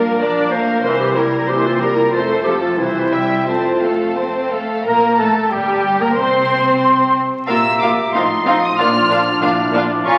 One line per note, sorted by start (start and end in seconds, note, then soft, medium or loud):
0.00 0.80 A#1 medium
0.00 0.19 G3 medium
0.00 0.20 A#3 soft
0.00 0.84 D4 soft
0.00 0.84 F4 medium
0.00 0.19 A#4 soft
0.00 0.50 A#4 medium
0.00 0.19 F5 soft
0.19 0.51 F3 medium
0.19 0.52 D4 soft
0.19 0.51 D5 soft
0.19 0.51 A#5 soft
0.50 0.83 A3 medium
0.50 0.85 A#3 soft
0.50 0.84 A#4 soft
0.50 0.83 C5 medium
0.50 0.83 F5 medium
0.83 2.11 C2 medium
0.83 1.14 E3 medium
0.83 1.48 G3 medium
0.83 1.98 C4 medium
0.83 0.99 A#4 medium
0.83 1.98 A#4 medium
0.83 1.14 C5 soft
0.83 1.14 C6 medium
1.00 1.18 G4 medium
1.15 1.49 G3 soft
1.15 1.51 E4 medium
1.15 1.49 A#4 soft
1.15 1.48 A#5 soft
1.48 1.82 E3 medium
1.48 2.12 A#3 medium
1.48 1.68 G4 medium
1.48 1.81 C5 soft
1.48 1.81 C6 soft
1.66 1.82 F4 medium
1.80 2.14 G3 soft
1.80 1.97 G4 medium
1.80 2.13 A#4 soft
1.80 2.13 A#5 medium
1.95 2.11 E4 medium
2.12 2.80 F2 medium
2.12 2.79 A3 medium
2.12 2.44 A3 soft
2.12 2.76 C4 medium
2.12 2.20 F4 medium
2.12 2.76 A4 medium
2.12 2.44 C5 soft
2.12 2.44 C6 soft
2.28 2.46 A4 medium
2.44 2.80 F3 soft
2.44 2.60 G4 medium
2.44 2.79 A4 soft
2.44 2.80 A5 soft
2.60 2.79 F4 medium
2.77 3.48 C2 soft
2.77 3.11 E3 soft
2.77 3.11 G3 soft
2.77 3.47 C4 soft
2.77 3.48 E4 medium
2.77 3.47 G4 soft
2.77 3.11 C5 soft
2.77 3.10 E5 soft
3.12 3.47 G3 soft
3.12 3.48 G3 soft
3.12 3.48 E5 soft
3.12 3.48 G5 soft
3.47 4.66 F2 soft
3.47 4.52 A3 soft
3.47 3.80 C4 soft
3.47 4.51 C4 medium
3.47 4.17 F4 medium
3.47 4.51 A4 soft
3.47 3.80 C5 soft
3.47 3.81 A5 soft
3.82 4.18 A3 soft
3.82 4.17 A4 soft
3.82 4.17 F5 soft
4.16 4.52 C4 soft
4.16 4.52 C5 soft
4.16 4.52 A5 soft
4.51 4.87 A3 soft
4.51 4.86 A4 soft
4.51 4.86 F5 soft
4.85 5.17 A#1 medium
4.85 5.17 A#2 medium
4.85 5.17 A#3 medium
4.85 5.16 A#4 medium
4.85 5.17 A#4 medium
4.85 5.23 A#4 medium
4.85 5.16 A#5 medium
4.85 5.17 A#5 medium
5.18 5.52 A1 soft
5.18 5.52 A2 medium
5.18 5.51 A3 soft
5.18 5.52 A3 soft
5.18 5.52 A4 soft
5.18 5.51 A4 soft
5.18 5.54 A4 soft
5.18 5.52 A5 medium
5.18 5.52 A5 soft
5.51 6.01 G1 soft
5.51 6.01 G2 soft
5.51 6.00 G3 medium
5.51 6.01 G3 medium
5.51 5.99 G4 soft
5.51 6.00 G4 medium
5.51 6.03 G4 soft
5.51 6.01 G5 medium
5.51 6.00 G5 medium
5.99 6.17 A#2 soft
5.99 6.08 A#3 medium
5.99 6.09 A#3 soft
5.99 6.16 A#4 medium
5.99 6.17 A#4 soft
5.99 6.18 A#4 medium
5.99 6.08 A#5 medium
6.16 7.14 C2 medium
6.16 7.13 C3 medium
6.16 7.14 C4 medium
6.16 7.15 C5 medium
6.16 7.14 C5 medium
6.16 7.15 C5 medium
6.16 7.13 C6 medium
7.47 8.06 A#1 medium
7.47 8.06 A#2 medium
7.47 8.09 A#3 medium
7.47 7.58 A#3 soft
7.47 8.09 F4 medium
7.47 7.59 F4 medium
7.47 8.16 G4 soft
7.47 7.56 A#4 medium
7.47 8.17 E5 soft
7.47 7.56 F5 soft
7.47 8.10 A#5 soft
7.47 7.78 E6 medium
7.80 7.91 A#3 soft
7.80 7.91 F4 soft
7.80 7.89 A#4 soft
7.80 7.90 F5 soft
7.80 8.13 D6 medium
8.13 8.70 A1 medium
8.13 8.71 A2 medium
8.13 8.78 F3 soft
8.13 8.23 C4 soft
8.13 8.76 D#4 soft
8.13 8.23 D#4 medium
8.13 8.23 F4 soft
8.13 8.78 F4 medium
8.13 8.77 D#5 soft
8.13 8.23 F5 soft
8.13 8.61 C6 medium
8.13 9.42 C6 medium
8.46 8.55 C4 soft
8.46 8.55 D#4 soft
8.46 8.54 F4 medium
8.46 8.55 F5 medium
8.61 8.77 D#6 medium
8.77 9.34 A#1 medium
8.77 9.34 A#2 medium
8.77 10.04 F3 medium
8.77 8.87 A#3 medium
8.77 9.41 D4 medium
8.77 8.87 D4 medium
8.77 8.86 F4 medium
8.77 9.12 F4 medium
8.77 9.41 D5 medium
8.77 8.86 F5 medium
8.77 9.72 F6 medium
9.10 9.18 A#3 medium
9.10 9.18 D4 soft
9.10 9.42 D4 medium
9.10 9.19 F4 soft
9.10 9.19 F5 soft
9.42 9.99 A#1 medium
9.42 9.99 A#2 medium
9.42 9.50 A#3 soft
9.42 9.50 D4 medium
9.42 10.05 D4 medium
9.42 10.06 E4 medium
9.42 9.50 F4 soft
9.42 10.05 D5 medium
9.42 9.50 F5 soft
9.42 10.05 D6 medium
9.73 9.81 A#3 medium
9.73 9.81 D4 medium
9.73 9.83 F4 medium
9.73 9.83 F5 medium
10.05 10.18 A#1 medium
10.05 10.18 A#2 medium
10.05 10.18 F3 medium
10.05 10.18 C#4 medium
10.05 10.18 F4 medium
10.05 10.18 F4 soft
10.05 10.18 F4 medium
10.05 10.18 F5 medium
10.05 10.14 A#5 medium
10.05 10.18 C#6 loud